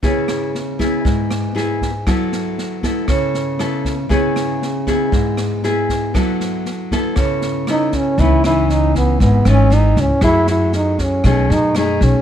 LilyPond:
<<
  \new Staff \with { instrumentName = "Trombone" } { \time 4/4 \key cis \minor \tempo 4 = 118 r1 | r1 | r1 | r2. dis'8 cis'8 |
e'8 e'8 dis'8 b8 b8 cis'8 dis'8 cis'8 | e'8 e'8 dis'8 cis'8 cis'8 dis'8 dis'8 cis'8 | }
  \new Staff \with { instrumentName = "Nylon-string guitar" } { \time 4/4 \key cis \minor << { <b e' gis'>4 r8 <b e' gis'>4. <b e' gis'>8 r8 | <b e' a'>4. <b e' a'>4. <b e' a'>8 r8 | <b e' gis'>4 r8 <b e' gis'>4. <b e' gis'>4 | <b e' a'>4 r8 <b e' a'>4. <b e' a'>4 |
<e b dis'>8 <e b dis'>2 <e b dis'>8 <e b dis'>8 r8 | <a e' gis'>2 <a dis' gis'>4 <a dis' gis'>4 | } \\ { cis2 gis,2 | fis2 cis2 | cis2 gis,2 | fis2 cis2 |
cis2 gis,2 | fis2 b,2 | } >> }
  \new Staff \with { instrumentName = "Upright bass" } { \clef bass \time 4/4 \key cis \minor r1 | r1 | r1 | r1 |
cis,2 gis,,8 gis,,4 cis,16 r16 | fis,2 b,,8 fis,4 b,,16 r16 | }
  \new DrumStaff \with { instrumentName = "Drums" } \drummode { \time 4/4 <bd sn>8 <ss sn>8 sn8 <bd sn>8 <bd sn>8 <ss sn>8 sn8 <bd sn>8 | <bd ss sn>8 sn8 sn8 <bd sn>8 <bd ss sn>8 sn8 <ss sn>8 <bd sn>8 | <bd sn>8 <ss sn>8 sn8 <bd sn>8 <bd sn>8 <ss sn>8 sn8 <bd sn>8 | <bd ss sn>8 sn8 sn8 <bd sn>8 <bd ss sn>8 sn8 <ss sn>8 <bd sn>8 |
<bd sn>8 <ss sn>8 sn8 <bd sn>8 <bd sn>8 <ss sn>8 sn8 <bd sn>8 | <bd ss sn>8 sn8 sn8 <bd sn>8 <bd ss sn>8 sn8 <ss sn>8 <bd sn>8 | }
>>